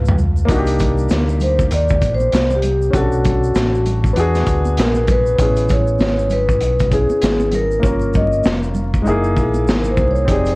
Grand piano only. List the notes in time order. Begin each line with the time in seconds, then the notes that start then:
Already playing: A3 B3 D4 F4
0.45 A#3 D4
0.49 D#4 F#4
0.58 G4
2.90 C#4 D4
2.95 F#4 A4
4.13 B3 D4
4.17 F#4 G#4
5.36 B3 C#4
5.40 E4 G#4
6.90 B3 C#4 E4 G#4
7.80 A#3 C#4
7.84 F4 A#4
9.02 G#3 D#4
9.06 A#3 E4 G#4
10.25 C4 D#4
10.29 G4 G#4